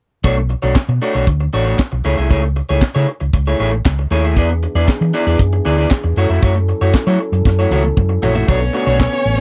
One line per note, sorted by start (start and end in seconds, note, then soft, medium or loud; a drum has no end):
0.24 0.53 B1 loud
0.24 0.39 A3 medium
0.24 0.37 D4 medium
0.24 0.37 F#4 medium
0.24 0.36 C#5 medium
0.24 kick medium
0.24 closed hi-hat medium
0.37 muted clean electric guitar stroke soft
0.37 closed hi-hat medium
0.49 muted clean electric guitar stroke soft
0.49 closed hi-hat medium
0.62 0.73 B1 medium
0.62 0.75 A3 soft
0.62 0.75 D4 medium
0.62 0.75 F#4 medium
0.62 0.74 C#5 medium
0.62 closed hi-hat soft
0.75 muted clean electric guitar stroke soft
0.75 kick medium
0.75 snare loud
0.75 clap medium
0.88 0.98 B2 medium
0.88 muted clean electric guitar stroke soft
0.88 closed hi-hat soft
1.01 1.14 A3 medium
1.01 1.14 D4 medium
1.01 1.13 F#4 medium
1.01 1.13 C#5 medium
1.01 closed hi-hat medium
1.14 1.25 B1 medium
1.14 1.26 A3 medium
1.14 1.27 D4 medium
1.14 1.26 F#4 medium
1.14 1.26 C#5 medium
1.14 closed hi-hat medium
1.27 1.47 D2 loud
1.27 muted clean electric guitar stroke soft
1.27 kick loud
1.27 closed hi-hat medium
1.39 muted clean electric guitar stroke soft
1.39 closed hi-hat soft
1.53 1.73 A1 medium
1.53 1.66 A3 medium
1.53 1.66 D4 medium
1.53 1.65 F#4 medium
1.53 1.65 C#5 medium
1.53 closed hi-hat medium
1.65 1.78 A3 medium
1.65 1.78 D4 soft
1.65 1.78 F#4 medium
1.65 1.78 C#5 medium
1.65 closed hi-hat medium
1.79 muted clean electric guitar stroke soft
1.79 kick medium
1.79 snare loud
1.79 clap medium
1.91 2.02 B1 medium
1.91 muted clean electric guitar stroke soft
1.91 closed hi-hat soft
2.04 2.15 C#2 medium
2.04 2.18 A3 medium
2.04 2.17 E4 medium
2.04 2.17 G#4 medium
2.04 2.17 C#5 medium
2.04 closed hi-hat medium
2.17 2.31 C2 medium
2.17 2.28 A3 soft
2.17 2.29 E4 medium
2.17 2.29 G#4 medium
2.17 2.29 E5 medium
2.17 closed hi-hat medium
2.30 2.60 C#2 medium
2.30 2.45 A3 medium
2.30 2.43 E4 medium
2.30 2.42 G#4 medium
2.30 2.42 C#5 medium
2.30 kick loud
2.30 closed hi-hat medium
2.43 muted clean electric guitar stroke soft
2.43 closed hi-hat medium
2.56 muted clean electric guitar stroke soft
2.56 closed hi-hat medium
2.68 2.79 C#2 medium
2.68 2.81 A3 soft
2.68 2.81 E4 medium
2.68 2.81 G#4 medium
2.68 2.81 C#5 medium
2.68 closed hi-hat soft
2.81 muted clean electric guitar stroke soft
2.81 kick loud
2.81 snare loud
2.81 clap medium
2.94 3.05 C#3 medium
2.94 3.07 A3 medium
2.94 3.07 E4 medium
2.94 3.07 G#4 medium
2.94 3.07 C#5 medium
2.94 closed hi-hat soft
3.07 muted clean electric guitar stroke soft
3.07 closed hi-hat medium
3.20 3.31 C#2 medium
3.20 muted clean electric guitar stroke soft
3.20 closed hi-hat medium
3.33 3.53 C#2 medium
3.33 muted clean electric guitar stroke soft
3.33 kick loud
3.33 closed hi-hat medium
3.45 3.58 A3 soft
3.45 3.59 E4 soft
3.45 3.59 G#4 medium
3.45 3.59 C#5 medium
3.45 closed hi-hat soft
3.60 3.79 A1 medium
3.60 3.74 A3 medium
3.60 3.72 E4 medium
3.60 3.72 G#4 medium
3.60 3.72 C#5 medium
3.60 closed hi-hat medium
3.72 muted clean electric guitar stroke soft
3.72 closed hi-hat soft
3.85 4.05 C#2 medium
3.85 muted clean electric guitar stroke soft
3.85 kick loud
3.85 snare loud
3.85 clap loud
3.98 muted clean electric guitar stroke soft
3.98 closed hi-hat soft
4.10 4.37 D#2 medium
4.10 4.24 A3 medium
4.10 4.24 E4 medium
4.10 4.24 G#4 medium
4.10 4.24 C#5 medium
4.10 closed hi-hat medium
4.23 4.36 A3 soft
4.23 4.36 E4 medium
4.23 4.36 G#4 medium
4.23 4.36 E5 medium
4.23 closed hi-hat medium
4.35 4.66 E2 medium
4.35 6.14 E3 medium
4.35 6.14 B3 medium
4.35 4.52 B3 medium
4.35 6.14 D4 medium
4.35 4.50 E4 medium
4.35 6.14 G#4 medium
4.35 4.50 G#4 medium
4.35 4.49 D5 medium
4.35 kick loud
4.35 closed hi-hat medium
4.49 muted clean electric guitar stroke soft
4.49 closed hi-hat medium
4.62 muted clean electric guitar stroke soft
4.62 closed hi-hat medium
4.75 4.85 E2 medium
4.75 4.88 B3 soft
4.75 4.87 E4 soft
4.75 4.87 G#4 medium
4.75 4.87 D5 medium
4.75 closed hi-hat soft
4.88 muted clean electric guitar stroke soft
4.88 kick loud
4.88 snare medium
4.88 clap medium
5.01 5.11 E3 medium
5.01 muted clean electric guitar stroke soft
5.01 closed hi-hat soft
5.14 5.27 B3 medium
5.14 5.26 E4 medium
5.14 5.26 G#4 medium
5.14 5.26 D5 medium
5.14 closed hi-hat medium
5.27 5.36 E2 medium
5.27 5.38 B3 medium
5.27 5.38 E4 medium
5.27 5.39 G#4 medium
5.27 5.39 D5 medium
5.27 closed hi-hat medium
5.39 5.59 F#2 medium
5.39 muted clean electric guitar stroke soft
5.39 kick medium
5.39 closed hi-hat medium
5.52 muted clean electric guitar stroke soft
5.52 closed hi-hat soft
5.65 5.85 D2 medium
5.65 5.78 B3 medium
5.65 5.77 E4 medium
5.65 5.77 G#4 medium
5.65 5.77 D5 medium
5.65 snare soft
5.65 closed hi-hat medium
5.77 5.89 B3 soft
5.77 5.90 E4 medium
5.77 5.90 G#4 medium
5.77 5.90 D5 medium
5.77 closed hi-hat soft
5.91 muted clean electric guitar stroke soft
5.91 kick loud
5.91 snare loud
5.91 clap loud
6.03 6.14 E2 medium
6.03 muted clean electric guitar stroke soft
6.03 closed hi-hat soft
6.16 6.26 F#2 medium
6.16 8.46 F#3 medium
6.16 6.29 A3 medium
6.16 8.46 C#4 medium
6.16 6.29 E4 medium
6.16 8.47 E4 medium
6.16 6.29 F#4 medium
6.16 8.46 A4 medium
6.16 6.29 C#5 medium
6.16 closed hi-hat medium
6.29 6.39 F2 medium
6.29 6.41 A3 medium
6.29 6.41 E4 medium
6.29 6.42 F#4 medium
6.29 6.41 E5 medium
6.29 closed hi-hat medium
6.42 6.72 F#2 loud
6.42 6.57 A3 medium
6.42 6.55 E4 medium
6.42 6.55 F#4 medium
6.42 6.55 C#5 medium
6.42 kick loud
6.42 closed hi-hat medium
6.56 muted clean electric guitar stroke soft
6.56 closed hi-hat soft
6.69 muted clean electric guitar stroke soft
6.69 closed hi-hat medium
6.81 6.91 F#2 medium
6.81 6.93 A3 medium
6.81 6.93 E4 soft
6.81 6.93 F#4 medium
6.81 6.93 C#5 medium
6.81 closed hi-hat soft
6.94 muted fingered electric bass stroke soft
6.94 muted clean electric guitar stroke soft
6.94 kick medium
6.94 snare loud
6.94 clap medium
7.07 7.17 F#3 medium
7.07 7.19 A3 medium
7.07 7.19 E4 medium
7.07 7.19 F#4 medium
7.07 7.19 C#5 medium
7.07 closed hi-hat soft
7.20 muted clean electric guitar stroke soft
7.20 closed hi-hat soft
7.32 7.42 F#2 medium
7.32 muted clean electric guitar stroke soft
7.32 closed hi-hat medium
7.45 7.65 F#2 loud
7.45 muted clean electric guitar stroke soft
7.45 kick loud
7.45 snare medium
7.59 7.70 A3 soft
7.59 7.71 E4 soft
7.59 7.71 F#4 medium
7.59 7.70 C#5 medium
7.70 7.90 C#2 medium
7.70 7.86 A3 medium
7.70 7.83 E4 medium
7.70 7.83 F#4 loud
7.70 7.83 C#5 loud
7.70 high tom medium
7.84 muted clean electric guitar stroke soft
7.84 high tom medium
7.97 8.17 F#2 medium
7.97 muted clean electric guitar stroke soft
7.97 kick loud
7.97 mid tom medium
8.09 muted clean electric guitar stroke soft
8.22 8.42 A#1 medium
8.22 8.35 A3 medium
8.22 8.34 E4 medium
8.22 8.34 F#4 medium
8.22 8.34 C#5 medium
8.22 floor tom medium
8.34 8.46 A3 soft
8.34 8.47 E4 medium
8.34 8.47 F#4 medium
8.34 8.47 E5 medium
8.34 floor tom medium
8.47 8.68 B1 loud
8.47 9.40 D3 medium
8.47 8.63 A3 medium
8.47 9.40 A3 medium
8.47 9.40 B3 medium
8.47 9.40 C#4 medium
8.47 8.60 D4 medium
8.47 8.60 F#4 medium
8.47 8.59 C#5 medium
8.47 9.40 C#5 loud
8.47 kick loud
8.47 crash medium
8.61 muted clean electric guitar stroke soft
8.61 closed hi-hat medium
8.73 8.85 A3 soft
8.73 8.86 D4 medium
8.73 8.85 F#4 medium
8.73 8.85 C#5 medium
8.73 closed hi-hat medium
8.86 9.06 B1 medium
8.86 8.98 A3 soft
8.86 8.99 D4 medium
8.86 8.99 F#4 medium
8.86 8.99 C#5 medium
8.86 closed hi-hat soft
8.99 muted clean electric guitar stroke soft
8.99 kick loud
8.99 snare loud
8.99 clap medium
9.13 muted clean electric guitar stroke soft
9.13 closed hi-hat soft
9.25 9.40 A1 medium
9.25 closed hi-hat medium